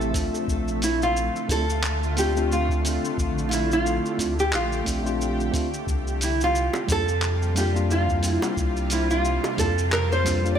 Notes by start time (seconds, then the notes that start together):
Already playing: A1 C3 F3 A3 C4 E4 G4 A4 E5
0.01 shaker
0.11 A3 C4, kick, open hi-hat
0.15 D4 F4, shaker
0.35 shaker
0.48 A#1 D3 F4, kick, shaker
0.68 shaker
0.82 E4, open hi-hat, shaker
1.02 F4, shaker
1.17 shaker
1.36 shaker
1.48 D2 A3 C4 D4 F4 A4, kick, open hi-hat, shaker
1.70 shaker
1.83 clap, shaker
2.03 shaker
2.16 A3 C4 D4 F4 G4, open hi-hat, shaker
2.35 A3 C4 D4 F4, shaker
2.52 F4, shaker
2.69 kick, shaker
2.82 A3 C4, open hi-hat
2.86 D4 F4, shaker
3.05 shaker
3.18 A#1 G4, kick, shaker
3.38 shaker
3.49 F4, open hi-hat, shaker
3.53 E4
3.72 F4, shaker
3.86 shaker
4.06 shaker
4.17 D2 A3 C4 D4 F4, kick, open hi-hat, shaker
4.39 G4, shaker
4.53 A#1 F4, clap, shaker
4.72 shaker
4.84 A#1 A3 C4 D4 F4, kick, open hi-hat, shaker
5.03 A3 C4 D4 F4, shaker
5.21 shaker
5.40 shaker
5.51 A3 C4 D4 F4, kick, open hi-hat, shaker
5.74 shaker
5.87 C2 C3 G3 F4, kick, shaker
6.07 shaker
6.21 E4, open hi-hat, shaker
6.41 F4, shaker
6.55 shaker
6.73 high bongo, shaker
6.87 F2 G3 A#3 D4 F4, kick, open hi-hat, shaker
6.92 A4
7.08 shaker
7.22 clap, shaker
7.42 shaker
7.54 G3 A#3 D4 F4 G4, open hi-hat, high bongo, shaker
7.73 G3 A#3 D4 F4, shaker
7.91 F4, shaker
8.09 kick, shaker
8.20 G3 A#3, open hi-hat, shaker
8.24 D4 E4 F4
8.42 high bongo, shaker
8.57 C2 A4, kick, shaker
8.77 shaker
8.90 E4, open hi-hat, shaker
9.11 F4, shaker
9.25 shaker
9.44 high bongo, shaker
9.57 F2 G3 A#3 D4 F4 A4, kick, open hi-hat, shaker
9.78 shaker
9.92 A#4, clap, shaker
10.12 C5, shaker
10.24 G3 A#3 D4 F4, kick, open hi-hat, high bongo, shaker
10.42 G3 A#3 D4 F4, shaker
10.55 D5